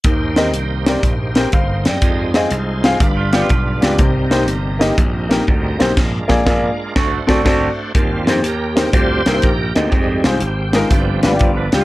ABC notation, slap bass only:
X:1
M:4/4
L:1/8
Q:"Swing" 1/4=122
K:Eb
V:1 name="Slap bass" clef=bass
E,,2 C,,2 B,,,2 G,,, _G,, | F,,2 C,,2 G,,,2 =B,,, _D,, | C,,2 G,,,2 B,,,2 D,, _C,, | B,,, B,,, B,,, z D,, D,, D,, z |
E,, F,, E,,2 D,, C,, B,,, D,, | F,, C,, A,,,2 G,,, A,,, G,,, _D,, |]